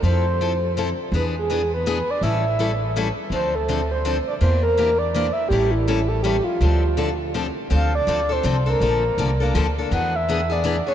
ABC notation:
X:1
M:3/4
L:1/16
Q:"Swing" 1/4=164
K:Dm
V:1 name="Soft synth lead"
c8 z4 | =B2 ^G4 B2 B2 d2 | e8 z4 | c2 A4 c2 c2 d2 |
c2 B4 d2 d2 e2 | G2 E4 A2 G2 F2- | F8 z4 | f2 d4 c4 B2- |
B8- B2 z2 | ^f2 e4 d4 ^c2 |]
V:2 name="Steel-string acoustic guitar"
[F,CEA]2 z2 [F,CEA] z3 [F,CEA] z3 | [E,=B,D^G]2 z2 [E,B,DG] z3 [E,B,DG] z3 | [E,G,^CEA]2 z2 [E,G,CEA] z3 [E,G,CEA] z3 | [D,F,CDA]2 z2 [D,F,CDA] z3 [D,F,CDA] z3 |
[E,B,DG]2 z2 [E,B,DG] z3 [E,B,DG] z3 | [E,G,^CEA]2 z2 [E,G,CEA] z3 [E,G,CEA] z3 | [D,F,CDA]2 z2 [D,F,CDA] z3 [D,F,CDA] z3 | [D,F,CDA]2 z2 [D,F,CDA] z [CDA]2 [D,F,CDA] z [CDA]2 |
[D,F,B,DA]2 z2 [D,F,B,DA] z [B,DA]2 [D,F,B,DA] z [B,DA]2 | [E,=B,D^G]2 z2 [E,B,DG] z [B,DG]2 [E,B,DG] z [B,DG]2 |]
V:3 name="Upright bass" clef=bass
F,,12 | E,,12 | A,,,12 | D,,12 |
E,,12 | A,,,12 | D,,12 | D,,4 D,,4 C,,4 |
B,,,4 C,,4 D,,4 | E,,12 |]